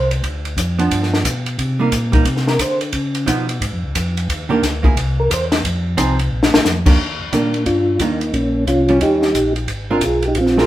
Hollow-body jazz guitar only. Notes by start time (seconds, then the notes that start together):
0.79 F3 B3 D4
1.80 G3 A#3 D#4
2.12 G3 A#3 D#4
3.26 F3 B3 D#4
4.49 D#3 A#3 D4 G4
4.83 A#3 E4 G#4
5.97 F3 C4 D#4 G#4
6.86 D#3 A#3 D4 G4
7.33 D#3 G3 A#3 D4
8.00 D#3 G3 A#3 D4
8.89 G3 C#4
9.91 G#3 C4 F4 A#4
10.57 G#3 C4 F4 A#4